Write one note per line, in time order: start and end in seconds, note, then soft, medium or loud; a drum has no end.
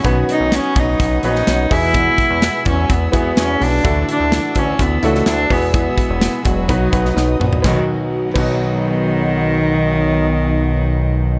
0.00 0.52 B2 medium
0.00 0.90 C#4 medium
0.00 5.48 F#5 medium
0.04 0.24 B1 loud
0.04 0.52 D#3 medium
0.04 0.50 F#3 medium
0.04 0.51 B3 loud
0.04 0.17 B3 medium
0.04 0.51 C#4 medium
0.04 0.90 D#4 medium
0.04 0.90 F#4 medium
0.04 0.53 F#4 loud
0.04 0.91 B4 medium
0.04 3.81 B4 medium
0.04 1.70 C#6 medium
0.04 1.70 D#6 medium
0.04 kick loud
0.04 closed hi-hat medium
0.29 0.56 D#4 medium
0.29 closed hi-hat medium
0.40 0.60 B1 loud
0.51 0.74 F#3 medium
0.51 0.75 B3 medium
0.51 0.75 C#4 medium
0.51 0.80 C#4 loud
0.51 0.76 F#4 medium
0.51 snare loud
0.51 closed hi-hat medium
0.75 0.95 B1 loud
0.75 1.22 F#3 medium
0.75 1.23 B3 medium
0.75 1.23 C#4 medium
0.75 1.25 D#4 medium
0.75 1.24 F#4 medium
0.75 kick medium
0.75 closed hi-hat medium
1.00 1.19 B1 medium
1.00 kick medium
1.00 closed hi-hat medium
1.23 1.43 A#1 medium
1.23 1.44 F#3 medium
1.23 1.45 B3 medium
1.23 1.46 C#4 medium
1.23 1.71 C#4 medium
1.23 1.71 D#4 medium
1.23 1.75 D#4 loud
1.23 1.47 F#4 medium
1.23 1.70 F#4 medium
1.23 1.72 B4 medium
1.23 closed hi-hat medium
1.36 snare soft
1.45 1.67 B1 medium
1.45 1.69 F#3 medium
1.45 1.69 B3 medium
1.45 1.71 C#4 medium
1.45 1.70 F#4 medium
1.45 snare loud
1.45 closed hi-hat medium
1.70 2.10 E2 medium
1.70 2.38 B2 medium
1.70 1.92 G#3 medium
1.70 1.93 B3 medium
1.70 2.56 B3 medium
1.70 2.57 E4 medium
1.70 1.93 E4 medium
1.70 2.67 E4 loud
1.70 2.57 F#4 medium
1.70 1.93 F#4 medium
1.70 2.57 G#4 medium
1.70 3.83 G#5 medium
1.70 3.83 E6 medium
1.70 kick medium
1.70 open hi-hat medium
1.93 2.46 E3 medium
1.93 2.39 G#3 medium
1.93 2.40 B3 medium
1.93 2.42 E4 loud
1.93 2.42 F#4 loud
1.93 kick loud
1.93 closed hi-hat medium
2.18 kick medium
2.18 closed hi-hat medium
2.30 2.50 E2 medium
2.40 2.63 G#3 medium
2.40 2.63 B3 medium
2.40 2.64 E4 medium
2.40 2.65 F#4 medium
2.40 snare loud
2.40 closed hi-hat medium
2.64 2.86 E2 loud
2.64 3.10 G#3 medium
2.64 3.11 B3 medium
2.64 3.12 E4 medium
2.64 3.12 F#4 medium
2.64 kick medium
2.64 closed hi-hat medium
2.69 2.94 C#4 medium
2.90 3.09 E2 medium
2.90 3.15 B3 medium
2.90 kick medium
2.90 closed hi-hat medium
3.11 3.33 E2 medium
3.11 3.34 G#3 medium
3.11 3.35 B3 medium
3.11 3.77 B3 medium
3.11 3.36 E4 medium
3.11 3.77 E4 medium
3.11 3.36 F#4 medium
3.11 3.78 F#4 medium
3.11 3.78 G#4 medium
3.11 kick medium
3.11 closed hi-hat medium
3.16 3.37 B3 medium
3.35 3.57 E2 loud
3.35 3.58 G#3 medium
3.35 3.59 B3 medium
3.35 3.60 E4 medium
3.35 3.60 F#4 medium
3.35 snare loud
3.35 closed hi-hat medium
3.40 3.65 C#4 medium
3.59 3.81 B1 medium
3.59 3.83 G#3 medium
3.59 3.84 B3 medium
3.59 4.10 D4 loud
3.59 3.83 E4 medium
3.59 3.84 F#4 medium
3.59 open hi-hat medium
3.83 4.04 D2 loud
3.83 4.52 A2 medium
3.83 4.31 D3 medium
3.83 4.30 E3 loud
3.83 4.31 A3 loud
3.83 4.70 D4 medium
3.83 4.70 E4 medium
3.83 4.32 E4 medium
3.83 4.70 F#4 medium
3.83 4.33 F#4 loud
3.83 4.71 A4 medium
3.83 5.49 D5 medium
3.83 5.49 A5 medium
3.83 6.67 E6 medium
3.83 kick loud
3.83 closed hi-hat medium
4.09 4.60 D4 loud
4.09 closed hi-hat medium
4.20 4.40 D2 medium
4.31 4.53 E3 medium
4.31 4.54 A3 medium
4.31 4.55 E4 medium
4.31 4.56 F#4 medium
4.31 snare loud
4.31 closed hi-hat medium
4.55 4.75 D2 loud
4.55 5.02 E3 medium
4.55 5.02 A3 medium
4.55 5.03 E4 medium
4.55 5.04 F#4 medium
4.55 kick medium
4.55 closed hi-hat medium
4.59 4.84 C#4 medium
4.79 4.99 D2 loud
4.79 5.07 B3 medium
4.79 kick medium
4.79 closed hi-hat medium
5.03 5.23 C#2 medium
5.03 5.25 E3 medium
5.03 5.25 A3 medium
5.03 5.28 A3 medium
5.03 5.50 D4 medium
5.03 5.49 E4 medium
5.03 5.26 E4 medium
5.03 5.49 F#4 medium
5.03 5.27 F#4 medium
5.03 5.51 A4 medium
5.03 closed hi-hat medium
5.15 snare soft
5.26 5.46 D2 loud
5.26 5.50 E3 medium
5.26 5.50 A3 medium
5.26 5.54 D4 loud
5.26 5.50 E4 medium
5.26 5.51 F#4 medium
5.26 snare loud
5.26 closed hi-hat medium
5.50 5.89 E2 medium
5.50 6.18 B2 medium
5.50 5.73 G#3 medium
5.50 6.36 B3 medium
5.50 5.73 B3 medium
5.50 5.75 B3 medium
5.50 6.36 E4 medium
5.50 5.74 E4 medium
5.50 6.36 F#4 medium
5.50 5.74 F#4 medium
5.50 6.37 G#4 medium
5.50 7.62 B4 medium
5.50 7.62 F#5 medium
5.50 6.69 G#5 medium
5.50 kick medium
5.50 open hi-hat medium
5.74 6.22 E3 medium
5.74 6.19 G#3 medium
5.74 6.21 B3 medium
5.74 6.49 B3 medium
5.74 6.21 E4 medium
5.74 6.22 F#4 loud
5.74 kick loud
5.74 closed hi-hat medium
5.98 kick medium
5.98 closed hi-hat medium
6.10 6.29 E1 medium
6.20 6.42 G#3 medium
6.20 6.43 B3 medium
6.20 6.44 E4 medium
6.20 6.44 F#4 medium
6.20 snare loud
6.20 closed hi-hat medium
6.43 6.71 E1 loud
6.43 6.68 G#3 medium
6.43 6.67 B3 medium
6.43 6.69 E4 medium
6.43 6.68 F#4 medium
6.43 kick medium
6.43 closed hi-hat medium
6.47 7.41 F#3 medium
6.68 6.89 B1 loud
6.68 6.92 B2 medium
6.68 6.90 F#3 medium
6.68 6.91 B3 medium
6.68 6.92 D#4 loud
6.68 6.91 D#4 medium
6.68 6.92 F#4 medium
6.68 6.91 F#4 medium
6.68 6.91 B4 medium
6.68 7.62 D#5 medium
6.68 7.64 D#6 medium
6.68 kick medium
6.68 closed hi-hat medium
6.92 7.12 B1 medium
6.92 7.13 F#3 medium
6.92 7.14 B3 medium
6.92 7.57 B3 medium
6.92 7.15 D#4 medium
6.92 7.57 D#4 medium
6.92 7.16 F#4 medium
6.92 7.58 F#4 medium
6.92 7.57 B4 medium
6.92 kick medium
6.92 closed hi-hat medium
7.05 snare soft
7.15 7.36 B1 loud
7.15 7.38 F#3 medium
7.15 7.39 B3 medium
7.15 7.39 D#4 medium
7.15 7.40 F#4 medium
7.15 snare medium
7.39 7.60 A#1 medium
7.39 7.62 F#3 medium
7.39 7.64 B3 medium
7.39 7.64 D#4 medium
7.39 7.65 F#4 medium
7.39 mid tom medium
7.53 floor tom medium
7.60 8.31 B2 medium
7.60 8.35 F#3 medium
7.60 7.76 B3 medium
7.60 11.39 D#4 medium
7.60 11.39 F#4 medium
7.60 11.39 D#5 medium
7.64 7.77 B1 loud
7.64 7.78 B1 medium
7.64 7.78 D#3 medium
7.64 11.39 B3 medium
7.64 8.37 B3 loud
7.64 7.78 D#4 medium
7.64 7.79 F#4 medium
7.64 11.39 F#5 medium
7.64 kick loud
7.64 snare medium
7.69 8.40 D#4 medium
7.69 8.43 F#4 medium
8.31 11.39 B2 medium
8.31 11.39 F#3 medium
8.31 11.39 B3 medium
8.36 11.39 B1 loud
8.36 11.39 B1 medium
8.36 11.39 D#3 medium
8.36 11.39 B3 medium
8.36 11.39 D#4 medium
8.36 11.39 F#4 medium
8.36 kick medium
8.36 crash medium
8.40 11.39 D#4 medium
8.40 11.39 F#4 medium